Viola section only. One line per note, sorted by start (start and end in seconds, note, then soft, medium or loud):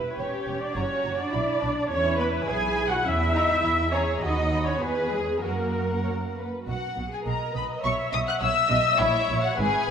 0.00 0.18 B4 medium
0.18 0.61 C#5 medium
0.62 0.76 D5 medium
0.75 1.18 C#5 medium
1.19 1.90 D5 medium
1.91 2.18 C#5 loud
2.19 2.47 B4 medium
2.48 2.91 G#5 loud
2.91 3.05 F#5 loud
3.06 3.93 E5 loud
3.93 4.22 C#5 loud
4.22 4.66 D#5 loud
4.68 4.82 C#5 medium
4.82 5.12 B4 loud
5.12 5.42 G#4 medium
5.42 6.35 A#4 medium
7.27 7.80 D#5 medium
7.83 8.41 E5 medium
8.42 8.50 C#5 medium
8.70 8.98 D#5 loud
8.98 9.57 C#5 loud
9.58 9.91 B4 loud